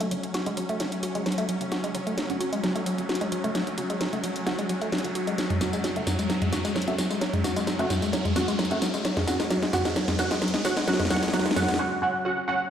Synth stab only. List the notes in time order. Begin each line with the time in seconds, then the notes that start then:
0.11 C#4 F#4 F#5
0.46 C#4 F#4 F#5
0.80 C#4 F#4 F#5
1.15 C#4 F#4 F#5
1.61 C#4 F#4 F#5
1.95 C#4 F#4 F#5
2.29 C#4 F#4 F#5
2.63 C#4 F#4 F#5
2.98 C#4 F#4 F#5
3.44 C#4 F#4
3.78 C#4 F#4 F#5
4.13 C#4 F#4 F#5
4.46 C#4 F#4 F#5
5.04 C#4 F#4 F#5
5.61 C#4 F#4 F#5
5.96 C#4 F#4 F#5
6.53 C#4 F#4 F#5
6.87 C#4 F#4 F#5
7.44 C#4 F#4 F#5
7.79 C#4 F#4 F#5
8.36 C#4 F#4 F#5
8.71 C#4 F#4 F#5
9.27 C#4 F#4 F#5
9.73 C#4 F#4 F#5
10.19 C#4 F#4 F#5
10.65 C#4 F#4 F#5
10.88 C#4 F#4 F#5
11.10 C#4 F#4 F#5
11.33 C#4 F#4 F#5
11.56 C#4 F#4 F#5
11.79 C#4 F#4 F#5
12.02 C#4 F#4 F#5
12.25 C#4 F#4 F#5
12.48 C#4 F#4 F#5